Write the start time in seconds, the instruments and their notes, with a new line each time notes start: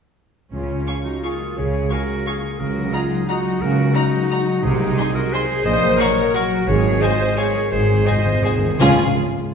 0.52 double bass section C#2, cello section C#3, timpani C#3, harp C#3, viola section C#4, clarinet F4
0.70 harp G#3
0.87 harp G#4, violin section F5 G#5 C#6
1.05 harp G#3, viola section D#4, clarinet F#4
1.23 harp A#3, viola section F4, clarinet G#4, violin section F5 G#5 C#6
1.40 harp G#3
1.57 double bass section C#2, harp C#3, cello section C#3, viola section G#4, clarinet C#5
1.74 harp C#4
1.90 viola section F#4, harp G#4, clarinet A#4, violin section F5 G#5 C#6
2.09 harp G#3
2.26 harp A#3, viola section F4, clarinet G#4, violin section F5 G#5 C#6
2.43 harp G#3
2.59 double bass section C#2, harp C#3, cello section C#3, viola section F#4, clarinet A#4
2.76 harp F#3
2.93 harp D#4, viola section F4, clarinet G#4, violin section D#5 F#5 A#5
3.11 harp F#3
3.28 harp G#3, viola section D#4, clarinet F#4, violin section D#5 F#5 A#5
3.46 harp F#3
3.61 double bass section C#2, cello section C#3, harp C#3, viola section F#4, clarinet A#4
3.78 harp C#4
3.95 viola section D#4, harp D#4, clarinet F#4, violin section D#5 F#5 A#5
4.13 harp F#3
4.31 harp G#3, violin section D#5 F#5 A#5
4.47 harp F#3
4.63 double bass section C2, cello section C3, harp C3, viola section D#4, clarinet G#4
4.81 harp G#3
4.98 harp D#4, violin section D#5 G#5 C6
5.15 harp G#3, viola section F#4, clarinet A#4
5.33 harp A#3, viola section G#4, clarinet C5, violin section D#5 G#5 C6
5.50 harp G#3
5.65 double bass section A#1, cello section A#2, harp A#2, viola section C5, clarinet D#5
5.82 harp F#3
5.99 harp F#4, viola section A#4, clarinet C#5, violin section F#5 C#6
6.17 harp F#3
6.34 harp G#3, viola section F#4, clarinet A#4, violin section F#5 C#6
6.51 harp F#3
6.67 double bass section G#1, timpani G#2, harp G#2, cello section G#2, viola section G#4, clarinet C#5
6.84 harp G#3
7.01 harp F4, viola section C5, clarinet D#5, violin section F5 G#5
7.20 harp G#3
7.37 harp A#3, viola section G#4, clarinet C#5, violin section F5 G#5
7.55 harp G#3
7.71 double bass section G#1, harp G#2, timpani G#2, cello section G#2, viola section G#4, clarinet C5
7.79 timpani G#2
7.86 timpani G#2, harp G#3
7.94 timpani G#2
8.02 timpani G#2
8.06 timpani G#2, harp F#4, viola section C5, clarinet D#5, violin section D#5 F#5 G#5
8.17 timpani G#2
8.25 timpani G#2, harp G#3
8.34 timpani G#2
8.42 timpani G#2, harp A#3, viola section G#4, clarinet C5, violin section D#5 F#5 G#5
8.50 timpani G#2
8.58 timpani G#2
8.62 timpani G#2, harp G#3
8.74 harp C#3 G#3
8.79 double bass section C#2, timpani C#3, cello section C#3, harp C#4 G#4, violin section C#4 F4 G#4, viola section F4, clarinet F5
8.84 harp C#5